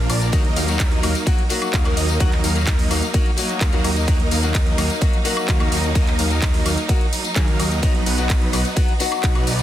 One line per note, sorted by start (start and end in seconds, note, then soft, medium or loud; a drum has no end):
0.00 0.29 F3 medium
0.00 0.29 A#3 medium
0.00 0.29 D4 loud
0.09 0.31 A#1 loud
0.09 0.30 F3 medium
0.09 0.30 A#3 medium
0.09 0.30 D4 medium
0.09 0.30 A#4 medium
0.09 0.30 D5 medium
0.09 open hi-hat loud
0.09 tambourine medium
0.09 high woodblock medium
0.21 closed hi-hat soft
0.21 tambourine soft
0.32 0.54 D#2 loud
0.32 0.42 F#3 medium
0.32 9.63 F#3 medium
0.32 0.54 F#3 medium
0.32 7.79 A#3 medium
0.32 0.54 A#3 medium
0.32 0.43 A#3 medium
0.32 9.63 D#4 loud
0.32 0.43 D#4 medium
0.32 0.54 D#4 medium
0.32 0.43 F#4 loud
0.32 0.54 A#4 medium
0.32 0.54 D#5 loud
0.32 kick loud
0.32 closed hi-hat loud
0.32 ride medium
0.32 tambourine soft
0.45 closed hi-hat soft
0.56 0.77 D#2 loud
0.56 0.77 F#3 medium
0.56 0.77 A#3 medium
0.56 0.77 D#4 medium
0.56 0.77 A#4 medium
0.56 0.77 F5 medium
0.56 open hi-hat loud
0.56 tambourine medium
0.67 0.78 F#3 medium
0.67 0.78 A#3 medium
0.67 0.78 D#4 medium
0.67 0.78 F#4 medium
0.67 closed hi-hat soft
0.67 tambourine soft
0.80 1.01 D#2 loud
0.80 1.00 F#3 medium
0.80 1.00 A#3 medium
0.80 1.00 D#4 medium
0.80 1.00 A#4 medium
0.80 1.00 D#5 loud
0.80 kick loud
0.80 clap loud
0.80 closed hi-hat loud
0.80 ride medium
0.92 closed hi-hat soft
1.02 1.14 D#2 loud
1.02 1.13 F#3 medium
1.02 1.16 F#3 medium
1.02 1.16 A#3 medium
1.02 1.13 A#3 medium
1.02 1.16 D#4 medium
1.02 1.13 D#4 medium
1.02 1.13 F#4 medium
1.02 1.16 A#4 medium
1.02 1.16 F5 medium
1.02 open hi-hat loud
1.02 tambourine medium
1.02 high woodblock medium
1.15 closed hi-hat soft
1.15 tambourine soft
1.26 1.42 F#3 medium
1.26 1.42 A#3 medium
1.26 1.43 D#4 medium
1.26 1.43 F#4 medium
1.26 kick loud
1.26 closed hi-hat loud
1.26 ride medium
1.26 tambourine soft
1.38 closed hi-hat soft
1.49 1.82 F#3 loud
1.49 1.82 A#3 medium
1.49 1.83 D#4 medium
1.49 1.83 F#4 medium
1.49 open hi-hat loud
1.49 tambourine medium
1.62 closed hi-hat soft
1.62 tambourine soft
1.62 high woodblock medium
1.73 1.95 D#2 loud
1.73 1.94 F#3 medium
1.73 1.94 A#3 medium
1.73 1.94 D#4 medium
1.73 1.94 A#4 medium
1.73 1.94 F5 loud
1.73 kick loud
1.73 clap loud
1.73 closed hi-hat medium
1.73 ride medium
1.84 2.01 F#3 medium
1.84 2.01 A#3 medium
1.84 2.01 D#4 medium
1.84 2.01 F#4 medium
1.84 closed hi-hat soft
1.84 high woodblock medium
1.97 2.18 D#2 loud
1.97 2.18 F#3 medium
1.97 2.18 A#3 medium
1.97 2.18 D#4 medium
1.97 2.18 A#4 medium
1.97 2.18 D#5 medium
1.97 open hi-hat loud
1.97 tambourine medium
2.09 closed hi-hat soft
2.09 tambourine soft
2.20 2.42 D#2 loud
2.20 2.30 F#3 loud
2.20 2.41 F#3 medium
2.20 2.30 A#3 medium
2.20 2.41 A#3 medium
2.20 2.41 D#4 medium
2.20 2.30 D#4 medium
2.20 2.31 F#4 loud
2.20 2.41 A#4 medium
2.20 2.41 D#5 medium
2.20 kick loud
2.20 closed hi-hat loud
2.20 ride medium
2.32 clap soft
2.32 closed hi-hat soft
2.44 2.65 D#2 loud
2.44 2.64 F#3 medium
2.44 2.64 A#3 medium
2.44 2.64 D#4 medium
2.44 2.64 A#4 medium
2.44 2.64 F5 medium
2.44 open hi-hat loud
2.44 tambourine medium
2.55 2.65 F#3 medium
2.55 2.65 A#3 medium
2.55 2.66 D#4 medium
2.55 2.66 F#4 medium
2.55 closed hi-hat soft
2.55 tambourine soft
2.67 2.88 D#2 loud
2.67 2.88 F#3 medium
2.67 2.88 A#3 medium
2.67 2.88 D#4 medium
2.67 2.88 A#4 medium
2.67 2.88 D#5 medium
2.67 kick loud
2.67 clap loud
2.67 closed hi-hat medium
2.67 ride medium
2.79 open hi-hat medium
2.90 3.01 D#2 loud
2.90 3.00 F#3 medium
2.90 3.04 F#3 medium
2.90 3.04 A#3 medium
2.90 3.00 A#3 medium
2.90 3.04 D#4 medium
2.90 3.01 D#4 medium
2.90 3.01 F#4 medium
2.90 3.04 A#4 medium
2.90 3.04 F5 medium
2.90 open hi-hat loud
2.90 tambourine medium
2.90 high woodblock medium
3.02 closed hi-hat soft
3.02 tambourine soft
3.13 3.30 F#3 loud
3.13 3.30 A#3 medium
3.13 3.30 D#4 medium
3.13 3.30 F#4 loud
3.13 kick loud
3.13 closed hi-hat loud
3.13 ride medium
3.13 tambourine soft
3.26 closed hi-hat soft
3.37 3.70 F#3 loud
3.37 3.70 A#3 medium
3.37 3.70 D#4 medium
3.37 3.70 F#4 medium
3.37 open hi-hat loud
3.37 tambourine medium
3.49 closed hi-hat soft
3.49 tambourine soft
3.61 3.82 D#2 loud
3.61 3.82 F#3 medium
3.61 3.82 A#3 medium
3.61 3.82 D#4 medium
3.61 3.82 A#4 medium
3.61 3.82 F5 loud
3.61 kick loud
3.61 clap loud
3.61 closed hi-hat loud
3.61 ride medium
3.61 tambourine soft
3.72 3.88 F#3 medium
3.72 3.88 A#3 medium
3.72 3.89 D#4 medium
3.72 3.89 F#4 medium
3.72 closed hi-hat soft
3.84 4.06 D#2 medium
3.84 4.05 F#3 medium
3.84 4.05 A#3 medium
3.84 4.05 D#4 medium
3.84 4.05 A#4 medium
3.84 4.05 D#5 medium
3.84 open hi-hat loud
3.84 tambourine medium
3.84 high woodblock medium
3.96 closed hi-hat soft
3.96 tambourine soft
4.07 4.29 D#2 loud
4.07 4.17 F#3 medium
4.07 4.28 F#3 medium
4.07 4.28 A#3 medium
4.07 4.18 A#3 medium
4.07 4.28 D#4 medium
4.07 4.18 D#4 medium
4.07 4.18 F#4 medium
4.07 4.28 A#4 medium
4.07 4.28 D#5 medium
4.07 kick loud
4.07 closed hi-hat medium
4.07 ride medium
4.20 closed hi-hat soft
4.31 4.52 D#2 loud
4.31 4.52 F#3 medium
4.31 4.52 A#3 medium
4.31 4.52 D#4 medium
4.31 4.52 A#4 medium
4.31 4.52 F5 medium
4.31 open hi-hat loud
4.31 tambourine medium
4.42 4.53 F#3 medium
4.42 4.53 A#3 medium
4.42 4.53 D#4 medium
4.42 4.53 F#4 medium
4.42 closed hi-hat soft
4.42 tambourine soft
4.55 4.76 D#2 loud
4.55 4.75 F#3 medium
4.55 4.75 A#3 medium
4.55 4.75 D#4 medium
4.55 4.75 A#4 medium
4.55 4.75 D#5 medium
4.55 kick loud
4.55 clap loud
4.55 closed hi-hat loud
4.55 ride medium
4.67 closed hi-hat soft
4.78 4.89 D#2 medium
4.78 4.88 F#3 medium
4.78 4.91 F#3 medium
4.78 4.88 A#3 medium
4.78 4.91 A#3 medium
4.78 4.91 D#4 medium
4.78 4.88 D#4 medium
4.78 4.88 F#4 medium
4.78 4.91 A#4 medium
4.78 4.91 F5 medium
4.78 open hi-hat loud
4.78 tambourine medium
4.78 high woodblock medium
4.90 closed hi-hat soft
4.90 tambourine soft
5.01 5.17 F#3 medium
5.01 5.17 A#3 medium
5.01 5.18 D#4 medium
5.01 5.18 F#4 loud
5.01 kick loud
5.01 closed hi-hat medium
5.01 ride medium
5.01 tambourine soft
5.13 closed hi-hat soft
5.25 5.57 F#3 medium
5.25 5.57 A#3 medium
5.25 5.58 D#4 medium
5.25 5.58 F#4 loud
5.25 open hi-hat loud
5.25 tambourine medium
5.37 tambourine soft
5.37 high woodblock medium
5.48 5.70 D#2 loud
5.48 5.69 F#3 medium
5.48 5.69 A#3 medium
5.48 5.69 D#4 medium
5.48 5.69 A#4 medium
5.48 5.69 F5 loud
5.48 kick loud
5.48 clap loud
5.48 closed hi-hat medium
5.48 ride medium
5.60 5.76 F#3 medium
5.60 5.76 A#3 medium
5.60 5.76 D#4 medium
5.60 5.76 F#4 medium
5.60 closed hi-hat soft
5.60 high woodblock medium
5.72 5.93 D#2 medium
5.72 5.93 F#3 medium
5.72 5.93 A#3 medium
5.72 5.93 D#4 medium
5.72 5.93 A#4 medium
5.72 5.93 D#5 medium
5.72 open hi-hat loud
5.72 tambourine medium
5.84 closed hi-hat soft
5.84 tambourine soft
5.95 6.16 D#2 loud
5.95 6.05 F#3 loud
5.95 6.16 F#3 medium
5.95 6.05 A#3 medium
5.95 6.16 A#3 medium
5.95 6.16 D#4 medium
5.95 6.05 D#4 medium
5.95 6.06 F#4 loud
5.95 6.16 A#4 medium
5.95 6.16 D#5 loud
5.95 kick loud
5.95 closed hi-hat medium
5.95 ride medium
5.95 tambourine soft
6.07 clap soft
6.07 closed hi-hat soft
6.19 6.40 D#2 loud
6.19 6.39 F#3 medium
6.19 6.39 A#3 medium
6.19 6.39 D#4 medium
6.19 6.39 A#4 medium
6.19 6.39 F5 loud
6.19 open hi-hat loud
6.19 tambourine medium
6.30 6.40 F#3 medium
6.30 6.40 A#3 medium
6.30 6.41 D#4 medium
6.30 6.41 F#4 medium
6.30 closed hi-hat soft
6.30 tambourine soft
6.42 6.63 D#2 loud
6.42 6.63 F#3 medium
6.42 6.63 A#3 medium
6.42 6.63 D#4 medium
6.42 6.63 A#4 medium
6.42 6.63 D#5 loud
6.42 kick loud
6.42 clap loud
6.42 closed hi-hat medium
6.42 ride medium
6.54 open hi-hat medium
6.65 6.76 D#2 medium
6.65 6.75 F#3 medium
6.65 6.79 F#3 medium
6.65 6.79 A#3 medium
6.65 6.75 A#3 medium
6.65 6.79 D#4 medium
6.65 6.76 D#4 medium
6.65 6.76 F#4 medium
6.65 6.79 A#4 medium
6.65 6.79 F5 medium
6.65 open hi-hat loud
6.65 tambourine medium
6.65 high woodblock medium
6.77 closed hi-hat soft
6.77 tambourine soft
6.88 7.05 F#3 medium
6.88 7.05 A#3 medium
6.88 7.05 D#4 medium
6.88 7.05 F#4 medium
6.88 kick loud
6.88 closed hi-hat medium
6.88 ride medium
6.88 tambourine soft
7.01 closed hi-hat soft
7.13 open hi-hat loud
7.13 tambourine medium
7.24 closed hi-hat soft
7.24 tambourine soft
7.35 7.57 D#2 medium
7.35 7.46 F#3 medium
7.35 7.57 F#3 medium
7.35 7.57 A#3 medium
7.35 7.46 A#3 medium
7.35 7.57 D#4 medium
7.35 7.46 D#4 medium
7.35 7.46 G#4 loud
7.35 7.57 A#4 medium
7.35 7.57 F5 loud
7.35 kick loud
7.35 clap loud
7.35 closed hi-hat medium
7.35 ride medium
7.48 closed hi-hat soft
7.59 7.81 D#2 loud
7.59 7.80 F#3 medium
7.59 7.80 A#3 medium
7.59 7.80 D#4 medium
7.59 7.80 A#4 medium
7.59 7.80 D#5 medium
7.59 open hi-hat loud
7.59 tambourine medium
7.59 high woodblock medium
7.71 tambourine soft
7.82 8.04 B1 loud
7.82 7.92 F#3 medium
7.82 8.03 F#3 medium
7.82 8.04 B3 medium
7.82 9.63 B3 medium
7.82 7.93 B3 medium
7.82 8.04 D#4 medium
7.82 7.93 D#4 medium
7.82 7.93 F#4 loud
7.82 8.03 B4 medium
7.82 8.04 D#5 medium
7.82 kick loud
7.82 closed hi-hat medium
7.82 ride medium
7.82 tambourine soft
7.95 closed hi-hat soft
8.06 8.27 B1 loud
8.06 8.27 F#3 medium
8.06 8.27 B3 medium
8.06 8.27 D#4 medium
8.06 8.27 B4 medium
8.06 8.27 F#5 medium
8.06 open hi-hat loud
8.06 tambourine medium
8.17 8.28 F#3 medium
8.17 8.28 B3 medium
8.17 8.28 D#4 medium
8.17 8.28 F#4 medium
8.17 closed hi-hat soft
8.17 tambourine soft
8.30 8.51 B1 loud
8.30 8.50 F#3 medium
8.30 8.50 B3 medium
8.30 8.50 D#4 medium
8.30 8.50 B4 medium
8.30 8.50 D#5 loud
8.30 kick loud
8.30 clap loud
8.30 closed hi-hat medium
8.30 ride medium
8.30 tambourine soft
8.42 closed hi-hat soft
8.52 8.64 B1 medium
8.52 8.63 F#3 medium
8.52 8.66 F#3 medium
8.52 8.66 B3 medium
8.52 8.63 B3 medium
8.52 8.63 D#4 medium
8.52 8.66 D#4 medium
8.52 8.63 F#4 medium
8.52 8.66 B4 medium
8.52 8.66 F#5 medium
8.52 open hi-hat loud
8.52 tambourine medium
8.52 high woodblock medium
8.65 closed hi-hat soft
8.65 tambourine soft
8.76 8.92 F#3 medium
8.76 8.92 B3 medium
8.76 8.93 D#4 medium
8.76 8.93 F#4 loud
8.76 kick loud
8.76 closed hi-hat medium
8.76 ride medium
8.76 tambourine soft
8.88 closed hi-hat soft
8.99 9.32 F#3 medium
8.99 9.32 B3 medium
8.99 9.33 D#4 medium
8.99 9.33 F#4 loud
8.99 open hi-hat loud
8.99 tambourine medium
9.12 closed hi-hat soft
9.12 tambourine soft
9.12 high woodblock medium
9.23 9.45 B1 loud
9.23 9.44 F#3 medium
9.23 9.44 B3 medium
9.23 9.44 D#4 medium
9.23 9.44 B4 medium
9.23 9.44 F#5 loud
9.23 kick loud
9.23 clap loud
9.23 closed hi-hat medium
9.23 ride medium
9.35 9.51 F#3 medium
9.35 9.51 B3 medium
9.35 9.51 D#4 medium
9.35 9.51 F#4 medium
9.35 closed hi-hat soft
9.35 high woodblock medium
9.47 9.63 B1 medium
9.47 9.63 F#3 medium
9.47 9.63 B3 medium
9.47 9.63 D#4 medium
9.47 9.63 B4 medium
9.47 9.63 D5 medium
9.47 open hi-hat loud
9.47 tambourine medium
9.59 closed hi-hat soft
9.59 tambourine soft